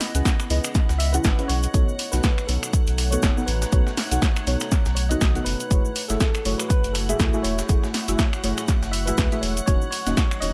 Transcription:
Already playing: ambient pad B3 E4 D#5, string machine F#5 F#6
0.01 snare, open hi-hat, shaker
0.15 analog synth bass C#2, synth stab C#4 E4 G#4 B4 F#5, closed hi-hat, cabasa
0.25 kick, snare, closed hi-hat, cabasa, shaker
0.40 finger snap, cabasa
0.50 analog synth bass C#2, synth stab C#4 E4 G#4 B4 D#5, open hi-hat, shaker
0.64 finger snap, closed hi-hat, cabasa
0.75 kick, snare, closed hi-hat, cabasa, shaker
0.89 analog synth bass C#2, snare, closed hi-hat, cabasa
0.98 tine electric piano E5, open hi-hat, shaker
1.13 synth stab C#4 E4 G#4 B4 F#5, tine electric piano B4, closed hi-hat, cabasa
1.24 analog synth bass G#1, kick, snare, closed hi-hat, cabasa, shaker
1.39 synth stab C#4 E4 G#4 B4 F#5, closed hi-hat, cabasa
1.48 analog synth bass B1, tine electric piano C#5, open hi-hat, shaker
1.63 closed hi-hat, cabasa
1.74 analog synth bass B1, ambient pad A3 D#4 C#5, synth stab B3 D#4 F#4 A4 C#5, kick, closed hi-hat, cabasa, shaker
1.89 cabasa
1.99 open hi-hat, shaker
2.12 analog synth bass B1, synth stab B3 D#4 F#4 A4 F#5, tine electric piano B4, snare, closed hi-hat, cabasa
2.23 kick, snare, closed hi-hat, cabasa, shaker
2.38 finger snap, cabasa
2.47 analog synth bass B1, synth stab B3 D#4 F#4 A4 C#5, tine electric piano A4, open hi-hat, shaker
2.63 finger snap, closed hi-hat, cabasa
2.73 kick, closed hi-hat, cabasa, shaker
2.87 analog synth bass B1, closed hi-hat, cabasa
2.98 finger snap, open hi-hat, shaker
3.11 synth stab B3 D#4 F#4 A4 F#5, tine electric piano C#5, closed hi-hat, cabasa
3.22 analog synth bass F#1, kick, snare, closed hi-hat, cabasa, shaker
3.37 synth stab B3 D#4 F#4 A4 F#5, cabasa
3.46 analog synth bass A1, tine electric piano B4, open hi-hat, shaker
3.62 snare, closed hi-hat, cabasa
3.72 analog synth bass B1, synth stab B3 D#4 F#4 A4 C#5, kick, closed hi-hat, cabasa, shaker
3.87 snare, cabasa
3.97 snare, open hi-hat, shaker
4.11 analog synth bass B1, synth stab B3 D#4 F#4 A4 F#5, closed hi-hat, cabasa
4.22 kick, snare, closed hi-hat, cabasa, shaker
4.36 finger snap, cabasa
4.47 analog synth bass B1, synth stab B3 D#4 F#4 A4 C#5, open hi-hat, shaker
4.60 finger snap, closed hi-hat, cabasa
4.71 kick, snare, closed hi-hat, cabasa, shaker
4.85 analog synth bass B1, snare, closed hi-hat, cabasa
4.95 tine electric piano C#5, open hi-hat, shaker
5.09 synth stab B3 D#4 F#4 A4 F#5, tine electric piano D#5, closed hi-hat, cabasa
5.21 analog synth bass B1, kick, snare, closed hi-hat, cabasa, shaker
5.35 synth stab B3 D#4 F#4 A4 F#5, closed hi-hat, cabasa
5.45 analog synth bass F#1, tine electric piano B4, open hi-hat, shaker
5.60 closed hi-hat, cabasa
5.71 analog synth bass F#1, synth stab A3 E4 F#4 G#4 C#5, ambient pad A3 E4 F#4, string machine F#5 F#6, kick, closed hi-hat, cabasa, shaker
5.85 cabasa
5.96 open hi-hat, shaker
6.08 analog synth bass F#1, synth stab A3 E4 F#4 G#4 E5, tine electric piano A4, snare, closed hi-hat, cabasa
6.20 kick, snare, closed hi-hat, cabasa, shaker
6.34 finger snap, cabasa
6.45 analog synth bass F#1, synth stab A3 E4 F#4 G#4 C#5, open hi-hat, shaker
6.58 tine electric piano B4, finger snap, closed hi-hat, cabasa
6.68 tine electric piano B4, kick, closed hi-hat, cabasa, shaker
6.84 analog synth bass F#1, closed hi-hat, cabasa
6.93 tine electric piano A4, finger snap, open hi-hat, shaker
7.09 synth stab A3 E4 F#4 G#4 E5, closed hi-hat, cabasa
7.20 analog synth bass C#2, kick, snare, closed hi-hat, cabasa, shaker
7.33 synth stab A3 E4 F#4 G#4 E5, cabasa
7.43 analog synth bass E1, tine electric piano C#5, open hi-hat, shaker
7.59 snare, closed hi-hat, cabasa
7.69 analog synth bass F#1, synth stab A3 E4 F#4 G#4 C#5, kick, closed hi-hat, cabasa, shaker
7.83 snare, cabasa
7.94 snare, open hi-hat, shaker
8.08 analog synth bass F#1, synth stab A3 E4 F#4 G#4 E5, closed hi-hat, cabasa
8.19 kick, snare, closed hi-hat, cabasa, shaker
8.33 finger snap, cabasa
8.44 analog synth bass F#1, synth stab A3 E4 F#4 G#4 C#5, open hi-hat, shaker
8.58 finger snap, closed hi-hat, cabasa
8.68 kick, snare, closed hi-hat, cabasa, shaker
8.83 analog synth bass F#1, snare, closed hi-hat, cabasa
8.92 tine electric piano E5, open hi-hat, shaker
9.06 synth stab A3 E4 F#4 G#4 E5, tine electric piano B4, closed hi-hat, cabasa
9.18 analog synth bass C#2, kick, snare, closed hi-hat, cabasa, shaker
9.32 synth stab A3 E4 F#4 G#4 E5, closed hi-hat, cabasa
9.41 analog synth bass E1, tine electric piano C#5, open hi-hat, shaker
9.57 closed hi-hat, cabasa
9.66 analog synth bass D#1, ambient pad F#3 D#4 C#5, synth stab A#3 C#4 D#4 F#4 C#5, tine electric piano C#5, kick, closed hi-hat, cabasa, shaker
9.81 cabasa
9.91 tine electric piano C#5, open hi-hat, shaker
10.06 analog synth bass D#1, synth stab A#3 C#4 D#4 F#4 F#5, snare, closed hi-hat, cabasa
10.17 kick, snare, closed hi-hat, cabasa, shaker
10.31 finger snap, cabasa
10.40 analog synth bass D#1, synth stab A#3 C#4 D#4 F#4 C#5, tine electric piano D#5, open hi-hat, shaker

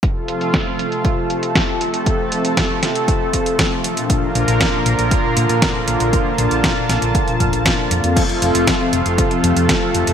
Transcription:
0.03 analog synth pad C3 F3 A3 F4 A4, kick, closed hi-hat
0.28 analog polysynth F3 C4 F4, closed hi-hat
0.41 closed hi-hat
0.54 kick, snare, closed hi-hat
0.66 analog polysynth F3 C4 F4 A4 F5
0.79 closed hi-hat
0.92 closed hi-hat
1.05 kick, closed hi-hat
1.17 analog polysynth F3 C4 F4 F5
1.30 closed hi-hat
1.43 closed hi-hat
1.55 kick, snare, closed hi-hat
1.81 closed hi-hat
1.94 analog polysynth F3 C4 F4 A4 F5, closed hi-hat
2.06 kick, closed hi-hat
2.32 analog polysynth F3 C4 F4 A4 F5, closed hi-hat
2.45 closed hi-hat
2.57 kick, snare, closed hi-hat
2.70 analog polysynth F3 C4 F4 A4 F5
2.83 snare, closed hi-hat
2.95 closed hi-hat
3.08 kick, closed hi-hat
3.21 analog polysynth F3 C4 F4 A4 F5
3.33 kick, closed hi-hat
3.46 closed hi-hat
3.59 analog polysynth F3, kick, snare, closed hi-hat
3.84 closed hi-hat
3.97 analog polysynth A#2 D4 F4 F5, closed hi-hat
4.10 analog synth pad D3 A#3 F4 A#4, kick, closed hi-hat
4.35 fingered electric bass A#1, analog polysynth A#2 D4 F4 A#4 F5, closed hi-hat
4.48 fingered electric bass A#1, closed hi-hat
4.61 kick, snare, closed hi-hat
4.73 analog polysynth A#2 D4 F4 A#4 F5
4.86 fingered electric bass A#1, closed hi-hat
4.99 fingered electric bass A#1, closed hi-hat
5.11 kick, closed hi-hat
5.24 analog polysynth A#2 D4 F4 A#4 F5
5.37 fingered electric bass A#2, closed hi-hat
5.49 fingered electric bass A#2, closed hi-hat
5.62 kick, snare, closed hi-hat
5.88 fingered electric bass A#1, closed hi-hat
6.00 fingered electric bass A#1, analog polysynth A#2 D4 F4 A#4, closed hi-hat
6.13 analog synth pad A5, kick, closed hi-hat
6.38 fingered electric bass A#1, analog polysynth A#2 D4 F4 A#4 F5, closed hi-hat
6.51 fingered electric bass A#1, closed hi-hat
6.64 kick, snare, closed hi-hat
6.77 analog polysynth A#2 D4 F4 A#4 F5
6.89 fingered electric bass A#1, snare, closed hi-hat
7.02 fingered electric bass A#1, closed hi-hat
7.15 kick, closed hi-hat
7.27 analog polysynth A#2 D4 F4 A#4 F5, closed hi-hat
7.40 fingered electric bass F1, kick, closed hi-hat
7.53 fingered electric bass A#1, closed hi-hat
7.66 analog polysynth A#2 F4 F5, kick, snare, closed hi-hat
7.91 fingered electric bass F2, closed hi-hat
8.04 fingered electric bass F2, analog polysynth F3 C4 F4 A4 F5, closed hi-hat
8.16 analog synth pad C3 F3 A3 F4 A4, kick, closed hi-hat, crash
8.29 closed hi-hat
8.42 fingered electric bass F1, analog polysynth F3 C4 F4 A4 F5, closed hi-hat
8.55 fingered electric bass F1, closed hi-hat
8.67 kick, snare, closed hi-hat
8.80 analog polysynth F3 C4 F4 A4 F5
8.93 fingered electric bass F1, closed hi-hat
9.06 fingered electric bass F1, closed hi-hat
9.18 kick, closed hi-hat
9.31 analog polysynth F3 C4 F4 A4 F5, closed hi-hat
9.44 fingered electric bass F2, closed hi-hat
9.56 fingered electric bass F2, closed hi-hat
9.69 analog polysynth F3 F4 F5, kick, snare, closed hi-hat
9.95 fingered electric bass F1, closed hi-hat
10.07 fingered electric bass F1, analog polysynth F3 C4 F4 A4 F5, closed hi-hat

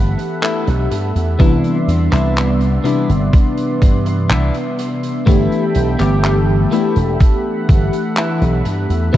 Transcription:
Already playing: slap bass G1, fm electric piano E3 A3 B3 D4 G4, analog synth pad A4 E5 F#5 B5
0.18 muted clean electric guitar stroke, closed hi-hat
0.42 clean electric guitar A3 B3 E4, clap, closed hi-hat
0.67 slap bass B1, closed hi-hat
0.91 slap bass G2, muted clean electric guitar stroke, closed hi-hat
1.16 slap bass E2, closed hi-hat
1.38 slap bass C2, fm electric piano C3 E3 G3 B3 D4, clean electric guitar B3 D4 E4, analog synth pad B3 D5 C6, kick, closed hi-hat
1.64 closed hi-hat
1.88 slap bass E2, closed hi-hat
2.12 slap bass C2, clean electric guitar B3 D4 E4, clap, closed hi-hat
2.36 clap, closed hi-hat
2.60 closed hi-hat
2.84 fm electric piano C3 E3 G3 B3 D4, clean electric guitar B3 D4 E4, closed hi-hat
3.09 slap bass G1, closed hi-hat
3.33 muted clean electric guitar stroke, kick, closed hi-hat
3.57 closed hi-hat
3.82 slap bass G2, kick, closed hi-hat
4.05 muted clean electric guitar stroke, closed hi-hat
4.30 slap bass C2, clean electric guitar B3 D4 E4, clap, closed hi-hat
4.54 closed hi-hat
4.78 muted clean electric guitar stroke, closed hi-hat
5.03 closed hi-hat
5.26 slap bass G1, fm electric piano E3 A3 B3 D4 G4, clean electric guitar A3 B3 E4, analog synth pad A4 E5 G5 B5, kick, closed hi-hat
5.52 closed hi-hat
5.75 slap bass B1, closed hi-hat
5.99 slap bass G1, clean electric guitar A3 B3 G4, clap, closed hi-hat
6.24 clap, closed hi-hat
6.71 fm electric piano E3 A3 B3 D4 G4, clean electric guitar A3 B3 E4, closed hi-hat
6.96 slap bass E1, closed hi-hat
7.20 analog synth pad F#5, muted clean electric guitar stroke, kick, closed hi-hat
7.69 slap bass G1, kick, closed hi-hat
7.92 muted clean electric guitar stroke, closed hi-hat
8.17 clean electric guitar A3 B3 E4, clap, closed hi-hat
8.41 slap bass B1, closed hi-hat
8.65 slap bass G2, muted clean electric guitar stroke, closed hi-hat
8.90 slap bass E2, closed hi-hat
9.13 fm electric piano C3 E3, clean electric guitar B3 D4, kick, closed hi-hat

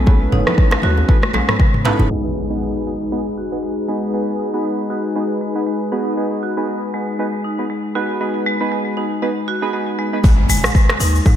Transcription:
Already playing: 808-style bass B1, analog synth pad B3 C#4
0.07 marimba G#3, synth keys B3 C#4 E4 A4 B4, kick, high conga, djembe tone, djembe bass
0.32 808-style bass F#1, marimba D#4, mid tom, muted conga, djembe tone, low conga
0.47 synth keys B3 C#4 E4 A4 B4, cross-stick, high conga, low conga
0.58 marimba G#3, kick
0.71 cross-stick, djembe slap, muted conga, djembe tone
0.82 808-style bass D#2, synth keys B3 C#4 E4 A4 B4, marimba F#4, high conga, low conga
0.97 djembe tone
1.09 marimba G#3, synth keys B3 C#4 E4 A4 B4, kick, muted conga
1.23 cross-stick, high conga
1.33 marimba G#3, high tom, djembe slap, high conga, djembe tone, djembe bass
1.48 synth keys B3 C#4 E4 A4 B4, cross-stick, mid tom, high tom, muted conga
1.59 marimba G#3, kick, mid tom, djembe tone
1.74 mid tom
1.85 synth keys B3 C#4 E4 A4 B4, marimba D#4, mid tom, muted conga, djembe slap, high conga
1.99 808-style bass F#1, mid tom, djembe tone
2.10 marimba G#3, analog synth pad G#3 D#4 G#4 B4, synth keys B3 D#4 F#4 G#4 B4, impact
2.36 marimba G#3
2.50 synth keys B3 D#4 F#4 G#4 B4
2.61 marimba G#3
2.86 synth keys B3 D#4 F#4 G#4 B4, marimba D#4
3.12 marimba G#3, synth keys B3 D#4 F#4 G#4 B4
3.38 marimba F#4
3.52 synth keys B3 D#4 F#4 G#4 B4
3.63 marimba G#3
3.88 marimba G#3, synth keys B3 D#4 F#4 G#4 B4
4.14 marimba G#3, synth keys B3 D#4 F#4 G#4 B4
4.39 marimba D#4
4.54 synth keys B3 D#4 F#4 G#4 B4
4.65 marimba G#3
4.90 synth keys B3 D#4 F#4 G#4 B4, marimba F#4
5.16 marimba G#3, synth keys B3 D#4 F#4 G#4 B4
5.41 marimba G#3
5.55 synth keys B3 D#4 F#4 G#4 B4
5.66 marimba G#3
5.92 synth keys B3 D#4 F#4 G#4 B4, marimba D#4
6.17 marimba G#3, synth keys B3 D#4 F#4 G#4 B4
6.43 marimba F#4
6.57 synth keys B3 D#4 F#4 G#4 B4
6.68 marimba G#3
6.94 marimba G#3, synth keys B3 D#4 F#4 G#4 B4
7.19 marimba G#3, synth keys B3 D#4 F#4 G#4 B4
7.44 marimba D#4
7.59 synth keys B3 D#4 F#4 G#4 B4
7.70 marimba G#3
7.95 synth keys B3 D#4 F#4 G#4 B4, marimba F#4
8.21 marimba G#3, synth keys B3 D#4 F#4 G#4 B4
8.46 marimba G#3
8.61 synth keys B3 D#4 F#4 G#4 B4
8.72 marimba G#3
8.97 synth keys B3 D#4 F#4 G#4 B4, marimba D#4
9.22 marimba G#3, synth keys B3 D#4 F#4 G#4 B4
9.48 marimba F#4
9.62 synth keys B3 D#4 F#4 G#4 B4
9.73 marimba G#3, synth keys B3 D#4 F#4 G#4 B4
9.99 marimba G#3
10.13 synth keys B3 D#4 F#4 G#4 B4
10.24 808-style bass G#1, marimba G#3, kick, impact, djembe tone, shaker
10.49 808-style bass F#1, marimba G#3, open hi-hat, shaker
10.64 cross-stick, djembe tone, shaker
10.75 marimba G#3, kick, shaker
10.89 cross-stick, djembe slap, djembe tone
11.00 808-style bass D#2, marimba D#4, open hi-hat, shaker
11.15 shaker
11.25 808-style bass G#2, marimba G#3, kick, djembe tone, shaker

